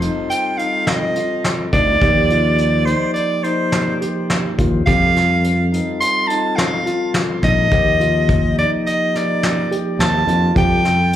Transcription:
Already playing: tonewheel organ G3 C4 F4 A4
0.02 grand piano D#4, closed hi-hat
0.30 soprano saxophone G5, closed hi-hat
0.58 grand piano D#4, soprano saxophone F5, closed hi-hat
0.87 soprano saxophone D#5, snare, closed hi-hat
1.15 grand piano F4, closed hi-hat
1.44 snare, closed hi-hat
1.73 fretless electric bass D2, grand piano D#4, soprano saxophone D5, kick, closed hi-hat
2.00 fretless electric bass D#2, tonewheel organ F3 A#3 D#4 G4, grand piano G4, kick, closed hi-hat
2.30 grand piano F4, closed hi-hat
2.58 closed hi-hat
2.85 grand piano D#4, soprano saxophone C5, closed hi-hat
3.14 soprano saxophone D5, closed hi-hat
3.43 grand piano D#4, soprano saxophone C5, closed hi-hat
3.72 snare, closed hi-hat
4.01 grand piano G4, closed hi-hat
4.30 snare, closed hi-hat
4.58 fretless electric bass D#2, grand piano F4, kick, closed hi-hat
4.85 fretless electric bass F2, tonewheel organ G3 C4 F4 A4, grand piano G4, soprano saxophone F5, kick, closed hi-hat
5.15 grand piano F4, snare, closed hi-hat
5.44 closed hi-hat
5.72 grand piano D#4, closed hi-hat
6.01 soprano saxophone C6, closed hi-hat
6.27 grand piano D#4, soprano saxophone A5, closed hi-hat
6.56 soprano saxophone F5, snare, closed hi-hat
6.86 grand piano F4, closed hi-hat
7.14 snare, closed hi-hat
7.42 fretless electric bass A#1, grand piano D#4, soprano saxophone D#5, kick, snare, closed hi-hat
7.70 fretless electric bass D#2, tonewheel organ F3 A#3 D#4 G4, grand piano G4, kick, closed hi-hat
8.00 grand piano F4, closed hi-hat
8.29 kick, closed hi-hat
8.57 grand piano D#4, soprano saxophone D5, closed hi-hat
8.87 soprano saxophone D#5, closed hi-hat
9.14 grand piano D#4, soprano saxophone D5, snare, closed hi-hat
9.43 snare, closed hi-hat
9.71 grand piano G4, closed hi-hat
9.99 fretless electric bass D#2, soprano saxophone A5, snare, closed hi-hat
10.27 fretless electric bass F2, grand piano F4, closed hi-hat
10.54 fretless electric bass F2, tonewheel organ G3 C4 F4 A4, grand piano G4, soprano saxophone G5, kick, closed hi-hat
10.84 grand piano F4, snare, closed hi-hat
11.13 closed hi-hat

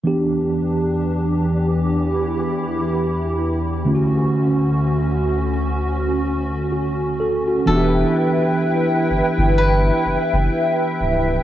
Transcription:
0.04 analog synth pad E2 E3 D4 G4, tine electric piano E3 B3 D4 G4
1.96 analog synth pad E4
3.85 analog synth pad D2 D3 C#4 F#4, tine electric piano D3 A3 C#4 F4
3.95 tine electric piano F#4
6.72 tine electric piano F#4
7.20 tine electric piano A4
7.48 tine electric piano F#4
7.66 sub bass E1, tine electric piano E3 B3 D4 F#4, analog synth pad E4 B4 E5 G5, guzheng A4
7.75 tine electric piano G4
9.10 sub bass G1
9.38 sub bass G1
9.58 guzheng B4
10.05 sub bass F#1
10.33 sub bass F#1
11.01 sub bass C#1

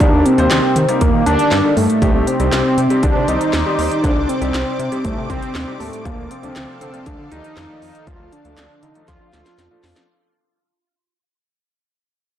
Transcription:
0.00 analog synth bass D#2, grand piano G3 A#3 D#4 G4 A#4, analog synth lead D4, kick, closed hi-hat
0.13 analog synth bass D#2
0.26 analog synth lead C4, closed hi-hat
0.38 analog synth bass D#2, grand piano G3 A#3 D#4 G4 C5, closed hi-hat
0.51 analog synth bass D#2, snare, clap, closed hi-hat
0.76 analog synth bass D#3, closed hi-hat
0.89 grand piano G3 A#3 D#4 G4 A#4, closed hi-hat
1.01 analog synth bass D#2, analog synth lead A#3, kick, closed hi-hat
1.14 analog synth bass D#3
1.26 analog synth bass D#2, grand piano D#3 G3 A#3 G4 A#4, analog synth lead D4, closed hi-hat
1.39 closed hi-hat
1.51 analog synth bass G2, snare, clap, closed hi-hat
1.64 grand piano G3 A#3 D#4 G4 A4
1.77 analog synth bass G2, analog synth lead A3, open hi-hat
1.90 closed hi-hat
2.02 analog synth bass C2, grand piano G3 C4 D4 D#4 G4, analog synth pad C5 D5 D6, kick, closed hi-hat
2.15 analog synth bass C2
2.27 analog synth lead C4, closed hi-hat
2.40 analog synth bass C2, grand piano G3 C4 D4 D#4 G4, closed hi-hat
2.52 analog synth bass C2, snare, clap, closed hi-hat
2.78 analog synth bass C3, closed hi-hat
2.90 grand piano G3 C4 D4 D#4 G4, closed hi-hat
3.03 analog synth bass C2, analog synth lead D4, kick, closed hi-hat
3.15 analog synth bass C3
3.28 analog synth bass C2, grand piano G3 C4 D#4 G4 D5, analog synth lead D#4, closed hi-hat
3.41 closed hi-hat
3.53 analog synth bass D#2, snare, clap, closed hi-hat
3.66 grand piano G3 C4 D#4 G4 D5
3.79 analog synth bass D#2, open hi-hat
3.91 closed hi-hat
4.04 analog synth bass C2, grand piano G3 C4 D4 D#4 A4, analog synth lead D4, kick, closed hi-hat
4.17 analog synth bass C2
4.22 analog synth lead D4
4.29 analog synth lead C4, closed hi-hat
4.41 analog synth bass C2, grand piano G3 C4 D4 D#4 G4, closed hi-hat
4.54 analog synth bass C2, snare, clap, closed hi-hat
4.79 analog synth bass C3, closed hi-hat
4.92 grand piano G3 C4 D4 D#4 G4, closed hi-hat
5.05 analog synth bass C2, analog synth lead A3, kick, closed hi-hat
5.17 analog synth bass C3
5.30 analog synth bass C2, grand piano G3 C4 D4 D#4 G4, analog synth lead C4, kick, closed hi-hat
5.42 closed hi-hat
5.55 analog synth bass D#2, snare, clap, closed hi-hat
5.67 grand piano G3 C4 D4 D#4 G4
5.80 analog synth bass D#2, analog synth lead A3, open hi-hat
5.93 closed hi-hat
6.05 analog synth bass D2, grand piano F3 A3 D4 F4 A4, analog synth lead A#3, analog synth pad A4 F5, kick, closed hi-hat
6.18 analog synth bass D2
6.31 analog synth lead C4, closed hi-hat
6.43 analog synth bass D2, grand piano F3 A3 D4 F4 A4, closed hi-hat
6.56 analog synth bass D2, snare, clap, closed hi-hat
6.81 analog synth bass D3, analog synth lead C4, closed hi-hat
6.93 grand piano F3 A3 D4 F4 A4, closed hi-hat
7.06 analog synth bass D2, analog synth lead D4, kick, closed hi-hat
7.19 analog synth bass D3
7.31 analog synth bass D2, grand piano F3 A3 F4 G4 D5, analog synth lead D#4, closed hi-hat
7.44 closed hi-hat
7.57 analog synth bass F2, snare, clap, closed hi-hat
7.69 grand piano F3 A3 F4 A4 D5
7.82 analog synth bass F2, open hi-hat
7.95 closed hi-hat
8.07 analog synth bass D2, grand piano F3 A3 D4 F4 A4, analog synth lead F4, kick, closed hi-hat
8.20 analog synth bass D2
8.33 analog synth lead D4, closed hi-hat
8.45 analog synth bass D2, grand piano F3 A3 D4 F4 A4, closed hi-hat
8.57 analog synth bass D2, snare, clap, closed hi-hat
8.83 analog synth bass D3, analog synth lead D#4, closed hi-hat
8.95 grand piano F3 A3 D4 F4 A4, closed hi-hat
9.08 analog synth bass D2, analog synth lead F4, kick, snare, closed hi-hat
9.21 analog synth bass D3
9.33 analog synth bass D2, grand piano F3 A3 D4 F4 A4, analog synth lead F4, snare, closed hi-hat
9.46 snare, closed hi-hat
9.58 analog synth bass F2, snare, closed hi-hat
9.71 grand piano F3 A3 D4 F4 A4
9.84 analog synth bass F2, snare, open hi-hat
9.96 snare, closed hi-hat

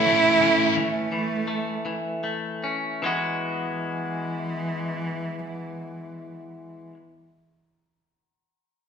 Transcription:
Already playing: clean electric guitar E3 C#4 C#5, cello E4
0.06 distorted electric guitar E3 A3 C#4 E4, clean electric guitar A3
0.41 distorted electric guitar E3 A3 C#4 E4, clean electric guitar C#4
0.76 clean electric guitar E3, cello A3
1.12 clean electric guitar E3
1.48 clean electric guitar A3
1.85 clean electric guitar E3
2.24 clean electric guitar A3
2.64 clean electric guitar C#4
3.02 clean electric guitar E3 G#3 B3 F#4, cello E3

